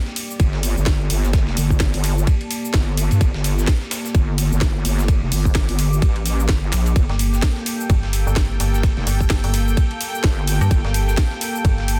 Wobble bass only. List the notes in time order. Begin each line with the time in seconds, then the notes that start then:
0.40 G1
0.77 G1
1.10 G1
1.47 F1
1.57 G1
1.94 G1
2.74 G1
3.11 G2
3.21 G1
3.35 G1
4.15 G1
4.52 G1
4.85 G1
5.22 F1
5.32 G1
5.69 G1
6.02 A1
6.49 G1
6.72 A#1
6.96 G1
8.97 F1
10.24 G1
10.71 G1